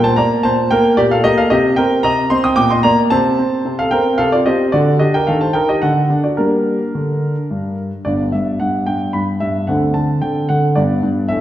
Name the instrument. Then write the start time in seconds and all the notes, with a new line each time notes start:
grand piano
Already playing: A#2
0.04 C5 A5
0.16 A#3 D5 A#5
0.43 A#2 C5 A5
0.71 A#3 A#4 G5
0.97 A#2 G4 D5
1.11 A4 F5
1.24 A#3 G4 D#5
1.38 A4 F5
1.50 C3 G4 D#5
1.76 C4 A#4 G5
2.03 C3 D#5 A#5
2.30 C4 D#5 C6
2.44 G5 D#6
2.56 A#2 G5 D6
2.71 D#5 C6
2.83 A#3 D5 A#5
3.10 C3 C5 A5
3.39 C4
3.65 C3
3.79 A4 F5
3.91 C4 A#4 G5
4.18 C3 A4 F5
4.32 F4 D5
4.46 C4 G4 D#5
4.72 D3 F#4 D5
4.99 D4 G4 D#5
5.14 A#4 G5
5.27 D#3 A4 F5
5.41 C5 A5
5.53 D#4 A#4 G5
5.69 G4 D#5
5.82 D3 A4 F#5
6.10 D4
6.24 F#4 D5
6.37 G3 A#3 D4 A#4
6.95 D3
7.51 G2
8.05 G1 G2 B3 D4 D5
8.32 G2 E5
8.60 G2 F#5
8.86 G2 G5
9.13 G2 B5
9.40 G2 E5
9.67 D2 D3 C4 D4 F#5
9.94 D3 A5
10.22 D3 G5
10.49 D3 F#5
10.76 G2 B3 D4 D5
11.03 G2
11.28 A1 A2 E4 A4 E5